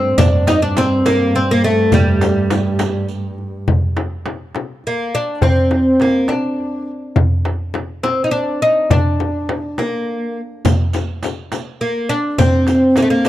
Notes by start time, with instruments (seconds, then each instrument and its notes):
Already playing: double bass G2, oud C4
0.18 double bass G2, oud D4, riq, darbuka dum, frame drum
0.47 oud D#4, riq, darbuka tek, frame drum
0.62 oud D4
0.77 oud C4, riq, darbuka tek, frame drum
1.06 oud A#3, riq, darbuka tek, frame drum
1.35 oud C4, riq
1.51 oud A#3
1.64 oud A3, riq
1.92 oud G3, riq, darbuka dum, frame drum
2.21 riq, darbuka tek, frame drum
2.50 riq, darbuka tek, frame drum
2.79 riq, darbuka tek, frame drum
3.08 riq
3.38 darbuka ka
3.68 frame drum, darbuka dum
3.97 darbuka tek, frame drum
4.26 darbuka tek, frame drum
4.55 darbuka tek, frame drum
4.84 oud A#3, darbuka ka
5.15 oud D4
5.41 oud C4, darbuka dum, frame drum
5.71 darbuka tek, frame drum
6.00 oud A#3, darbuka tek, frame drum
6.28 oud D4, darbuka tek, frame drum
6.59 darbuka ka
7.16 frame drum, darbuka dum
7.45 darbuka tek, frame drum
7.74 darbuka tek, frame drum
8.03 oud C4, darbuka tek, frame drum
8.24 oud D#4
8.31 oud D4, darbuka ka
8.62 oud D#4
8.90 oud D4, darbuka dum, frame drum
9.20 frame drum
9.49 darbuka tek, frame drum
9.78 oud A#3, darbuka tek, frame drum
10.65 riq, darbuka dum, frame drum
10.93 riq, darbuka tek, frame drum
11.23 riq, darbuka tek, frame drum
11.52 riq, darbuka tek, frame drum
11.80 oud A#3, riq, darbuka ka
12.09 oud D4, riq
12.38 oud C4, riq, darbuka dum, frame drum
12.67 riq, darbuka tek, frame drum
12.96 oud A#3, riq, darbuka tek, frame drum
13.02 oud A3
13.10 oud A#3
13.25 riq, darbuka tek, frame drum